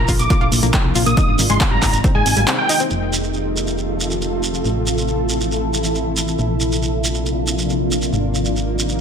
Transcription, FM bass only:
0.08 A#1
0.19 A#1
0.41 A#1
0.52 A#1
0.63 A#1
0.85 C2
0.95 A#1
1.06 A#1
1.28 G#1
1.39 G#1
1.50 G#1
1.71 G#1
1.82 G#1
1.93 G#1
2.15 G#1
2.26 G#1
2.37 G#1
2.91 F1
4.65 A1
6.39 A#1
8.13 G#1

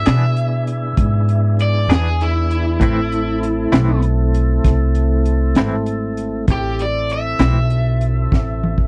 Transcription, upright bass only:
0.07 B2
0.97 G#2
1.88 E2
2.81 A1
3.72 B1
4.65 C2
5.56 G#1
6.47 A1
7.39 B1
8.32 A1

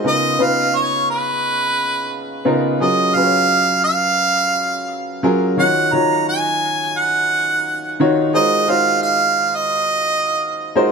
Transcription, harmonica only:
0.08 D#5
0.43 F5
0.76 C#5
1.11 B4
2.82 D#5
3.15 F5
3.84 F5
5.59 F#5
5.93 A#5
6.29 G#5
6.98 F#5
8.35 D#5
8.70 F5
9.03 F5
9.56 D#5

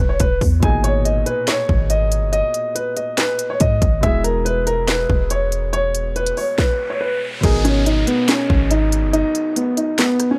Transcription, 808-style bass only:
0.00 E1
0.20 E1
0.41 E2
0.63 G#1
1.69 G#1
2.22 G1
3.61 G#2
3.82 G#1
4.03 E1
5.09 E1
7.44 G#1
8.50 G#1
9.03 G1

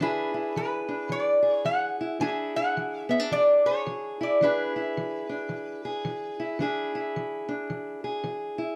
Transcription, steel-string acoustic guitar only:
0.00 E3 D4 E4 G#4
0.34 E4
0.56 E3
0.89 D4
1.09 E3
1.43 G#4
1.65 E3
2.01 E4
2.20 E3 D4 E4 G#4
2.57 E4
2.77 E3
3.09 B3
3.20 D4
3.31 E3
3.66 G#4
3.87 E3
4.21 E4
4.41 E3 D4 E4 G#4
4.76 E4
4.97 E3
5.29 D4
5.49 E3
5.85 G#4
6.05 E3
6.40 E4
6.59 E3 D4 E4 G#4
6.95 E4
7.16 E3
7.49 D4
7.70 E3
8.04 G#4
8.24 E3
8.58 E4

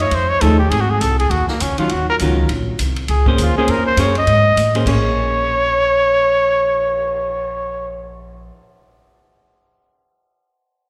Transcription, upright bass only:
Already playing: F#2
0.11 F2
0.41 D#2
0.70 G#1
1.01 C2
1.30 D#2
1.48 muted upright bass stroke
1.61 C#2
1.79 muted upright bass stroke
1.92 D#2
2.20 C#2
2.49 A#1
2.79 C2
3.09 C#2
3.38 D#2
3.55 muted upright bass stroke
3.67 F2
3.97 F#2
4.27 G#2
4.56 A2
4.86 A#1

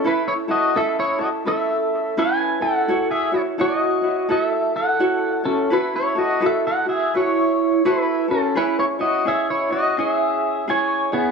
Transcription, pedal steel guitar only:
0.07 E4 B4
0.28 E4 C#5
0.51 F#4 D#5
0.76 A4 E5
0.99 E4 C#5
1.21 F#4 D#5
1.47 A4 E5
2.19 B4 G#5
2.62 A4 F#5
3.11 G#4 E5
3.34 E4 C#5
3.61 F#4 D#5
4.31 A4 D#5
4.43 E5
4.76 A4 F#5
5.45 C#4 A4
5.73 E4 B4
5.96 E4 C#5
6.19 F#4 D#5
6.46 A4 E5
6.67 A4 F#5
6.89 G#4 E5
7.16 E4 C#5
7.86 E4 B4
8.31 C#4 A4
8.57 E4 B4
8.79 E4 C#5
9.01 F#4 D#5
9.28 G#4 E5
9.50 E4 C#5
9.72 F#4 D#5
9.99 G#4 D#5
10.10 E5
10.70 C#5 G#5
11.13 B3 G#4

